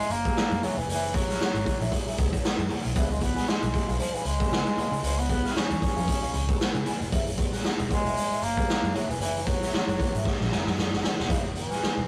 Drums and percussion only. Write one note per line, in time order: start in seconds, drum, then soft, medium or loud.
0.00 closed hi-hat medium
0.10 closed hi-hat medium
0.10 tambourine medium
0.25 kick medium
0.25 closed hi-hat medium
0.25 high conga medium
0.37 snare loud
0.37 tambourine medium
0.51 closed hi-hat soft
0.51 muted conga soft
0.51 high conga medium
0.62 closed hi-hat medium
0.62 tambourine medium
0.62 low conga loud
0.78 closed hi-hat soft
0.89 closed hi-hat loud
0.89 muted conga soft
0.89 low conga medium
1.03 closed hi-hat medium
1.14 kick loud
1.14 closed hi-hat medium
1.14 tambourine medium
1.28 snare soft
1.28 closed hi-hat medium
1.28 high conga medium
1.40 snare loud
1.40 tambourine medium
1.54 closed hi-hat medium
1.54 high conga medium
1.65 kick medium
1.65 closed hi-hat medium
1.65 tambourine soft
1.65 low conga medium
1.81 closed hi-hat medium
1.90 kick medium
1.90 closed hi-hat medium
1.90 tambourine medium
1.90 muted conga soft
1.90 high conga medium
2.07 closed hi-hat medium
2.17 kick loud
2.17 closed hi-hat medium
2.17 tambourine medium
2.33 kick medium
2.33 closed hi-hat medium
2.33 high conga medium
2.44 snare loud
2.44 tambourine medium
2.59 closed hi-hat soft
2.59 muted conga soft
2.59 high conga medium
2.69 open hi-hat medium
2.69 tambourine medium
2.69 low conga loud
2.85 closed hi-hat soft
2.95 kick loud
2.95 closed hi-hat loud
3.10 closed hi-hat medium
3.21 kick medium
3.21 closed hi-hat medium
3.21 tambourine medium
3.37 snare soft
3.37 closed hi-hat medium
3.37 high conga medium
3.47 snare loud
3.47 tambourine medium
3.47 muted conga soft
3.62 closed hi-hat medium
3.62 high conga medium
3.73 kick medium
3.73 closed hi-hat medium
3.73 tambourine soft
3.89 closed hi-hat medium
3.99 closed hi-hat medium
3.99 tambourine soft
3.99 muted conga soft
3.99 high conga medium
4.15 closed hi-hat medium
4.25 closed hi-hat medium
4.25 tambourine medium
4.40 kick loud
4.40 closed hi-hat medium
4.40 high conga medium
4.50 snare loud
4.50 tambourine medium
4.66 closed hi-hat soft
4.66 muted conga soft
4.66 high conga medium
4.77 closed hi-hat medium
4.77 tambourine medium
4.77 low conga medium
4.93 closed hi-hat medium
5.03 closed hi-hat loud
5.03 low conga medium
5.18 closed hi-hat medium
5.29 kick medium
5.29 closed hi-hat medium
5.29 tambourine medium
5.44 snare soft
5.44 closed hi-hat medium
5.44 high conga medium
5.54 snare loud
5.54 tambourine medium
5.54 muted conga soft
5.69 closed hi-hat soft
5.69 muted conga soft
5.69 high conga medium
5.82 kick medium
5.82 closed hi-hat medium
5.97 closed hi-hat medium
6.07 kick medium
6.07 closed hi-hat loud
6.07 tambourine soft
6.07 high conga medium
6.21 closed hi-hat medium
6.21 muted conga soft
6.33 closed hi-hat medium
6.33 tambourine medium
6.49 kick loud
6.49 closed hi-hat medium
6.49 high conga medium
6.60 snare loud
6.60 tambourine medium
6.74 closed hi-hat soft
6.74 high conga medium
6.85 closed hi-hat medium
6.85 tambourine medium
6.85 low conga medium
7.01 closed hi-hat soft
7.12 kick loud
7.12 closed hi-hat medium
7.12 low conga medium
7.26 closed hi-hat medium
7.26 muted conga soft
7.37 kick loud
7.37 closed hi-hat medium
7.37 tambourine medium
7.53 snare soft
7.53 closed hi-hat medium
7.53 high conga medium
7.64 snare loud
7.64 tambourine loud
7.64 muted conga soft
7.79 closed hi-hat medium
7.79 high conga medium
7.91 kick medium
7.91 closed hi-hat medium
8.06 closed hi-hat medium
8.16 closed hi-hat loud
8.16 tambourine medium
8.16 high conga medium
8.31 closed hi-hat medium
8.31 muted conga soft
8.42 closed hi-hat medium
8.42 tambourine medium
8.57 kick loud
8.57 closed hi-hat medium
8.57 high conga medium
8.68 snare loud
8.68 tambourine medium
8.83 closed hi-hat soft
8.83 high conga medium
8.93 closed hi-hat medium
8.93 tambourine medium
8.93 low conga medium
9.10 closed hi-hat medium
9.21 closed hi-hat loud
9.21 low conga medium
9.36 closed hi-hat medium
9.36 muted conga soft
9.46 kick medium
9.46 closed hi-hat medium
9.46 tambourine medium
9.61 snare soft
9.61 closed hi-hat medium
9.61 high conga medium
9.72 snare loud
9.72 tambourine medium
9.88 closed hi-hat medium
9.88 muted conga soft
9.88 high conga medium
9.98 kick medium
9.98 closed hi-hat medium
9.98 tambourine soft
9.98 low conga medium
10.15 closed hi-hat medium
10.24 kick medium
10.24 snare medium
10.24 tambourine soft
10.24 muted conga soft
10.24 high conga medium
10.41 snare medium
10.41 muted conga soft
10.51 snare medium
10.51 tambourine medium
10.66 snare medium
10.66 high conga medium
10.77 snare medium
10.77 tambourine medium
10.92 snare medium
10.92 muted conga soft
10.92 high conga medium
11.03 snare loud
11.03 tambourine medium
11.03 low conga medium
11.20 snare medium
11.30 kick loud
11.30 closed hi-hat loud
11.30 muted conga soft
11.30 low conga medium
11.55 closed hi-hat medium
11.70 snare soft
11.70 closed hi-hat medium
11.70 high conga medium
11.82 snare loud
11.82 muted conga soft
11.97 closed hi-hat soft
11.97 high conga medium